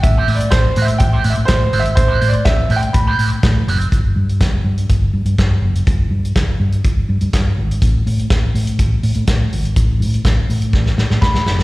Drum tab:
HH |x-oxx-oxx-oxx-ox|x-oxx-oxx-oxx-ox|x--xx--xx--xx--x|x--xx--xx--xx--x|
SD |----o-------o---|----o-------o---|----o-------o---|----o-------o---|
BD |o---o---o---o---|o---o---o---o---|o---o---o---o---|o---o---o---o---|

HH |x-oxx-oxx-oxx-ox|x-oxx-ox--------|
SD |----o-------o---|----o---oooooooo|
BD |o---o---o---o---|o---o---o---o---|